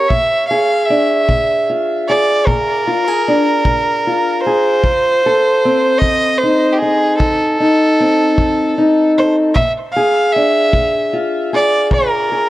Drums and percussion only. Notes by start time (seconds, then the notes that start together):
0.10 kick
1.29 kick
2.47 kick
3.65 kick
4.84 kick
6.02 kick
7.20 kick
8.38 kick
9.56 kick
10.73 kick
11.91 kick